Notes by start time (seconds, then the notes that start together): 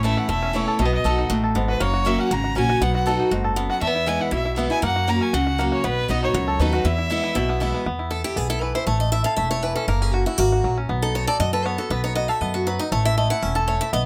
Already playing: A1 A2 C#4 E4
0.03 E3 A3 C#4 E4 E5
0.17 E4 F#5
0.28 E1 E2 A3 E5
0.42 C#4
0.53 E3 A3 C#4 E4 C#5
0.68 A4
0.79 B1 B2 A3 D#5
0.85 B3
0.93 F#4 D#5
1.04 B1 F#3 B3 D#4 F#4 A4
1.18 D#4
1.30 A1 A2 F#4
1.44 A4
1.55 G#1 G#2 B3
1.68 F#4 B4
1.80 F#1 F#2 A#3 C#5
1.94 F#4
2.05 F#3 A#3 C#4 F#4 E5
2.19 C#4 F#5
2.31 G#1 C#3 F#4 A#5
2.44 F#4
2.55 A#1 F#3 A#3 C#4 F#4 G#5
2.69 F#4
2.81 B1 B2 B3 F#5
2.95 F#4 F#5
3.06 F#3 B3 D#4 F#4 A4
3.20 D#4
3.31 F#1 G#2 F#4
3.44 A4
3.56 F#2 B3
3.70 F#4 F#5
3.81 E2 A3 E5
3.87 B3
3.95 E4
4.06 E3 G#3 B3 E4 G#5
4.20 E4 F#5
4.31 B1 B2 E4 E5
4.45 E4
4.56 E3 G#3 B3 E4
4.70 B3 E4 G#5
4.82 F#2 A#3 F#5
4.96 F#4
5.07 F#3 A#3 C#4 F#4 A#5
5.21 C#4 G#5
5.33 C#2 C#3 F#4 F#5
5.47 F#4
5.58 F#3 A#3 C#4 F#4
5.72 F#4 C#5
5.84 B1 B2 B3 B4
6.08 B1 F#3 B3 D#4 F#4 D#5
6.23 D#4 C#5
6.34 C#2 F#2 F#4
6.48 A4
6.59 D#2 F#3 B3 D#4 F#4 B4
6.72 D#4 F#4
6.84 E2 E4 E5
6.98 E4
7.10 E3 G#3 B3 E4
7.24 E4
7.35 B1 B2 E4
7.49 B3
7.60 E3 G#3 B3 E4
7.74 B3
7.86 E2 B3
7.99 E4
8.11 E4 A4
8.24 E4 G4
8.36 B1 B3 G#4
8.50 E4 A4
8.61 E3 B4
8.75 E4 C5
8.87 A1 A3 C#5
9.00 D#5
9.12 E4 E5
9.24 A4 F5
9.36 E1 A3 E5
9.51 E4 C#5
9.62 E3 B4
9.76 C#4 A4
9.88 F#1 A#3 A#4
10.02 C#4 G#4
10.14 F#4
10.26 E4 F#4
10.38 G#1 A#3 F#4
10.52 F#4
10.64 A#1 F#3
10.78 C#4
10.89 B1 B3
11.02 D#4 A4
11.15 F#4 C#5
11.27 A4 D5
11.40 F#2 F#4 D#5
11.53 A4 B4
11.65 B3 C#5
11.78 F#4 A4
11.90 B1 B3 B4
12.04 D#4 C#5
12.15 F#4 D#5
12.28 A4 E5
12.41 F#2 B3 D#5
12.54 F#4
12.67 F#3 B4
12.79 D#4 D#5
12.92 A1 A3 C#5
13.05 E4 E5
13.18 A3 D#5
13.30 E4 F#5
13.42 E1 C#4 E5
13.55 A4
13.68 A3 C#5
13.81 E4 E5
13.93 B1 B3 D#5